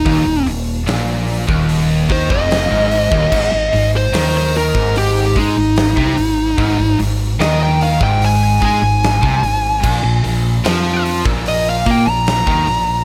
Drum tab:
CC |----------------|x---------------|----------------|x---------------|
HH |o-o-o-o-o-o-o-o-|--o-o-o-o-o-o-o-|o-o-o-o-o-o-o-o-|--o-o-o-o-o-o-o-|
SD |----o-------o---|--o-o-------o---|--o-o-------o---|--o-o-------o---|
BD |o------o--oo---o|o------o--o--o--|o------o--o--o--|o------o--o--o--|